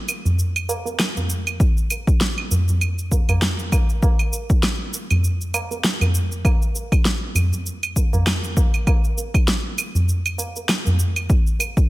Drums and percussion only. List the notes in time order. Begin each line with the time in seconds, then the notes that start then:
0.09 tabla tin, cabasa, claves
0.25 tabla ge, cabasa
0.39 cabasa
0.56 cabasa, claves
0.69 tabla na, tabla tin, cabasa
0.86 tabla tin, cabasa
0.99 snare, cabasa, claves
1.17 tabla tin, tabla ge, cabasa
1.30 cabasa
1.47 cabasa, claves
1.60 kick, cabasa
1.77 cabasa
1.90 tabla tin, cabasa, claves
2.07 kick, cabasa
2.21 snare, cabasa
2.38 claves
2.51 tabla tin, tabla ge, cabasa
2.68 tabla ge, cabasa
2.81 cabasa, claves
2.98 cabasa
3.11 kick, tabla tin, cabasa
3.29 tabla na, tabla ge, cabasa, claves
3.42 snare, cabasa
3.59 cabasa
3.72 kick, tabla na, cabasa, claves
3.89 cabasa
4.03 kick, tabla na, cabasa
4.19 cabasa, claves
4.33 tabla tin, cabasa
4.50 kick, cabasa
4.63 snare, cabasa, claves
4.94 tabla tin, cabasa
5.11 tabla ge, cabasa, claves
5.24 cabasa
5.41 cabasa
5.54 tabla na, tabla tin, cabasa, claves
5.71 tabla tin, cabasa
5.84 snare, cabasa
6.01 tabla tin, tabla ge, cabasa, claves
6.15 cabasa
6.32 cabasa
6.45 kick, tabla na, cabasa, claves
6.62 cabasa
6.75 tabla tin, cabasa
6.92 kick, cabasa, claves
7.05 snare, cabasa
7.35 tabla tin, tabla ge, cabasa, claves
7.53 tabla ge, cabasa
7.66 cabasa
7.83 cabasa, claves
7.96 kick, tabla tin, cabasa
8.13 tabla na, tabla ge, cabasa
8.27 snare, cabasa, claves
8.44 cabasa
8.57 kick, tabla na, cabasa
8.74 cabasa, claves
8.87 kick, tabla na, cabasa, claves
9.04 cabasa
9.18 tabla tin, cabasa
9.34 kick, cabasa, claves
9.48 snare, cabasa
9.78 tabla tin, cabasa, claves
9.95 tabla ge, cabasa
10.09 cabasa
10.26 cabasa, claves
10.38 tabla na, tabla tin, cabasa
10.56 tabla tin, cabasa
10.69 snare, cabasa, claves
10.86 tabla tin, tabla ge, cabasa
10.99 cabasa
11.16 cabasa, claves
11.30 kick, cabasa
11.47 cabasa
11.59 tabla tin, cabasa, claves
11.77 kick, cabasa